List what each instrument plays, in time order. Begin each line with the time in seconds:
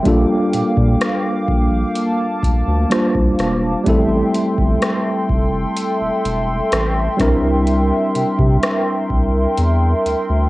Already playing: analog synth pad G5
0.03 sub bass A#1, tine electric piano G3 A#3 D4 F4, analog synth pad A#3 F5 D6, kick, closed hi-hat
0.08 tine electric piano A4
0.53 sub bass A#2, closed hi-hat
0.77 sub bass A#2, kick
1.01 cross-stick, closed hi-hat
1.48 sub bass A#1, kick
1.96 analog synth pad A5, closed hi-hat
2.43 sub bass D2, kick, closed hi-hat
2.67 sub bass D2
2.90 tine electric piano G3 A#3 D4 F4 C5, cross-stick, closed hi-hat
3.15 sub bass C2, kick
3.39 sub bass E1, cross-stick, closed hi-hat
3.84 sub bass A1, tine electric piano G3 A3 C4 E4, analog synth pad A4 E5 G5 C6, kick, closed hi-hat
3.89 tine electric piano A4
4.34 closed hi-hat
4.58 sub bass G1, kick
4.82 cross-stick, closed hi-hat
5.29 sub bass F1, kick
5.77 closed hi-hat
6.01 sub bass E1
6.25 sub bass E1, closed hi-hat
6.72 sub bass A1, cross-stick, closed hi-hat
7.17 sub bass C2, tine electric piano G3 C4 D4 E4, analog synth pad A#4, kick, cross-stick, closed hi-hat
7.22 tine electric piano A#4
7.67 closed hi-hat
8.15 sub bass C3, closed hi-hat
8.39 sub bass C3, kick
8.63 cross-stick, closed hi-hat
9.10 sub bass C2, kick
9.57 sub bass E2, closed hi-hat
10.06 sub bass D2, closed hi-hat
10.29 sub bass D2